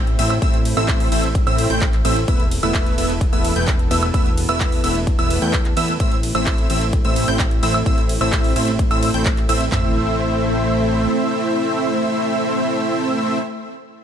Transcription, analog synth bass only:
0.00 0.16 A1 loud
0.19 0.40 A1 loud
0.42 0.75 A1 loud
0.77 1.09 A1 loud
1.12 1.44 A1 loud
1.47 1.68 A1 loud
1.70 2.02 A1 loud
2.05 2.26 A1 loud
2.28 2.61 E1 loud
2.63 2.96 E1 loud
2.98 3.30 E1 medium
3.33 3.54 E1 loud
3.56 3.88 E1 loud
3.91 4.12 E1 loud
4.14 4.47 E1 loud
4.49 4.81 E1 loud
4.84 5.16 E1 medium
5.19 5.40 E1 loud
5.42 5.75 E2 medium
5.77 5.98 E2 loud
6.00 6.33 A1 loud
6.35 6.68 A1 loud
6.70 7.02 A1 loud
7.05 7.26 A1 loud
7.28 7.61 A1 loud
7.63 7.84 A1 loud
7.86 8.19 A1 loud
8.21 8.54 A1 loud
8.56 8.88 A1 loud
8.91 9.12 A1 loud
9.14 9.47 A1 medium
9.49 9.70 A1 loud
9.72 11.08 A1 loud

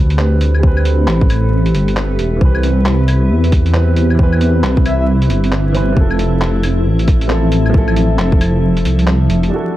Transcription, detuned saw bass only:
0.00 1.07 D2 loud
1.08 1.73 A1 medium
1.75 2.18 G1 medium
2.19 2.40 E1 medium
2.41 3.32 C2 medium
3.30 4.62 E2 medium
4.63 5.29 C2 medium
5.30 5.96 G1 medium
5.97 6.87 F1 loud
6.86 8.18 A1 loud
8.19 8.84 F1 medium
8.85 9.29 C2 medium
9.30 9.51 F1 loud

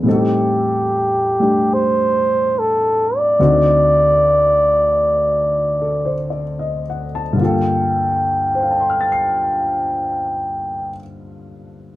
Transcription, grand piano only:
0.03 3.38 A2 soft
0.03 1.38 G3 soft
0.03 3.39 C4 soft
0.07 3.39 D#4 soft
0.07 3.40 A4 medium
1.40 3.39 G3 soft
1.40 3.39 A3 soft
1.40 3.39 D4 soft
1.40 3.40 G4 soft
3.39 7.40 D2 soft
3.39 7.34 D3 soft
3.39 7.40 C4 soft
3.39 7.41 D#4 soft
3.39 7.41 F#4 medium
5.82 6.12 A4 soft
6.05 6.41 C5 soft
6.30 6.80 D5 soft
6.59 7.05 D#5 soft
6.90 7.22 F#5 soft
7.15 7.53 A5 soft
7.33 10.89 G2 soft
7.33 10.92 D3 soft
7.38 10.94 A#3 soft
7.38 10.98 F4 soft
7.45 11.01 A4 medium
8.55 11.96 C5 soft
8.63 11.96 F5 soft
8.71 11.96 A5 soft
8.80 11.96 C6 soft
8.90 11.96 F6 soft
9.01 11.96 A6 soft
9.12 11.96 C7 soft

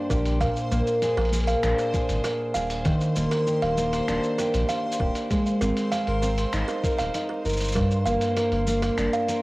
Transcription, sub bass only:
0.10 0.48 A#1 loud
0.71 0.82 A#1 medium
1.17 1.55 A#1 loud
1.63 1.73 A#1 medium
2.09 2.19 G#1 loud
2.55 2.93 D#1 loud
3.17 3.27 D#1 medium
3.62 4.00 D#1 medium
4.08 4.18 D#1 medium
4.54 4.64 A#1 medium
5.00 5.10 D#1 medium
5.61 5.71 G#1 loud
6.07 6.45 G#1 loud
6.53 6.63 G#1 medium
6.99 7.09 D#1 loud
7.45 7.82 G1 medium
8.06 8.16 G1 medium
8.52 8.89 G1 loud
8.98 9.08 G1 medium

